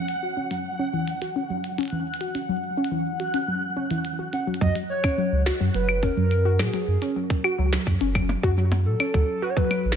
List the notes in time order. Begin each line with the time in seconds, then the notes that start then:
Already playing: F#5
0.08 closed hi-hat
0.23 F#4
0.37 C#4
0.51 F#3, closed hi-hat
0.79 C#4
0.93 E3
1.08 closed hi-hat
1.22 F#4, closed hi-hat
1.36 C#4
1.50 F#3
1.64 closed hi-hat
1.78 C#4, closed hi-hat
1.81 closed hi-hat
1.83 closed hi-hat
1.85 closed hi-hat
1.88 closed hi-hat
1.90 E3, closed hi-hat
2.14 closed hi-hat
2.21 F#4, closed hi-hat
2.35 C#4, closed hi-hat
2.49 F#3
2.77 C#4
2.84 closed hi-hat
2.91 E3
3.20 F#4, closed hi-hat
3.34 C#4, closed hi-hat
3.48 F#3
3.76 C#4
3.91 E3, closed hi-hat
4.05 closed hi-hat
4.19 F#4
4.33 C#4 F#5, closed hi-hat
4.47 F#3
4.54 closed hi-hat
4.61 F#2 F#3 D#5, kick
4.75 F#3, closed hi-hat
4.90 C#5
5.04 C#4, kick, closed hi-hat, claves
5.18 F#3
5.32 C#2
5.46 F#4, snare
5.60 F#2 F#3
5.75 F#1 F#3 B4, closed hi-hat
5.89 claves
6.03 C#4 A#4, kick, closed hi-hat
6.17 F#2 F#3
6.31 closed hi-hat
6.45 F#4
6.59 A#2 F#3 G#4, snare, claves
6.74 F#3, closed hi-hat
6.88 F#2
7.02 C#4, closed hi-hat
7.16 F#3
7.30 kick, closed hi-hat
7.44 F#4, claves
7.58 C#2 F#3
7.73 F#3, snare, closed hi-hat
7.87 F#2, kick
8.01 F#1 C#4, closed hi-hat
8.15 F#3, kick, claves
8.29 closed hi-hat, percussion blips
8.43 F#2 F#4, kick
8.57 F#3
8.72 F#3, closed hi-hat, percussion blips
8.86 A#2 A4
9.00 C#4, closed hi-hat, claves
9.14 D2 F#3, kick
9.42 F#4 B4
9.49 C#5
9.57 F#3 B4, kick
9.71 F#3, closed hi-hat, claves
9.85 A1
9.92 snare